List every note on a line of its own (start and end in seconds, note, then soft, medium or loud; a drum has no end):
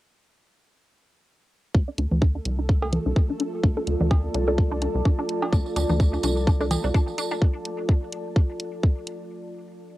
1.75 1.83 D2 loud
1.75 7.43 A3 medium
1.75 9.30 F4 medium
1.75 7.43 A4 medium
1.75 kick loud
1.86 1.90 D4 medium
1.86 9.30 A4 medium
1.98 2.07 D2 medium
1.98 2.02 D4 medium
1.98 closed hi-hat medium
2.12 2.40 D2 medium
2.12 low conga medium
2.22 2.24 D4 medium
2.22 kick loud
2.35 2.38 D4 medium
2.45 2.99 C2 medium
2.45 closed hi-hat medium
2.51 9.30 A5 medium
2.59 2.61 D4 medium
2.69 2.73 D4 medium
2.69 kick loud
2.82 9.31 D5 medium
2.82 cowbell medium
2.82 low bongo medium
2.93 2.95 D4 medium
2.93 closed hi-hat medium
2.93 low conga medium
3.06 3.13 C2 medium
3.06 3.09 D4 medium
3.16 kick loud
3.30 3.32 D4 medium
3.40 3.44 D4 medium
3.40 closed hi-hat medium
3.64 3.72 D2 medium
3.64 3.66 D4 medium
3.64 kick loud
3.77 3.80 D4 medium
3.77 low bongo medium
3.87 3.96 D2 medium
3.87 closed hi-hat medium
4.00 4.29 D2 medium
4.00 4.03 D4 medium
4.00 low conga medium
4.11 4.15 D4 medium
4.11 kick loud
4.11 cowbell medium
4.34 4.88 C2 medium
4.34 4.37 D4 medium
4.34 closed hi-hat medium
4.48 4.51 D4 medium
4.48 low bongo medium
4.58 kick loud
4.71 4.73 D4 medium
4.82 4.86 D4 medium
4.82 closed hi-hat medium
4.95 5.02 C2 loud
5.05 5.08 D4 medium
5.05 kick loud
5.19 5.22 D4 medium
5.29 closed hi-hat medium
5.42 5.44 D4 medium
5.42 cowbell medium
5.53 5.61 D2 loud
5.53 5.56 D4 medium
5.53 kick loud
5.53 tambourine soft
5.66 tambourine soft
5.76 5.85 D2 medium
5.76 5.79 D4 medium
5.76 closed hi-hat medium
5.76 tambourine medium
5.89 6.18 D2 medium
5.89 5.93 D4 medium
5.89 tambourine soft
5.89 low conga medium
6.00 kick loud
6.00 tambourine medium
6.13 6.15 D4 medium
6.13 tambourine soft
6.23 6.77 C2 medium
6.23 6.27 D4 medium
6.23 closed hi-hat loud
6.23 tambourine loud
6.37 tambourine soft
6.47 6.49 D4 medium
6.47 kick loud
6.47 tambourine medium
6.60 6.63 D4 medium
6.60 tambourine soft
6.60 low bongo medium
6.71 closed hi-hat medium
6.71 tambourine medium
6.71 cowbell medium
6.71 low conga medium
6.84 6.91 C2 loud
6.84 6.86 D4 medium
6.84 tambourine soft
6.94 6.98 D4 medium
6.94 kick loud
6.94 tambourine medium
7.08 tambourine soft
7.18 7.20 D4 medium
7.18 closed hi-hat loud
7.18 tambourine medium
7.31 7.34 D4 medium
7.31 tambourine soft
7.42 kick loud
7.65 closed hi-hat medium
7.89 kick loud
8.12 closed hi-hat medium
8.36 kick loud
8.60 closed hi-hat medium
8.83 kick loud
9.07 closed hi-hat medium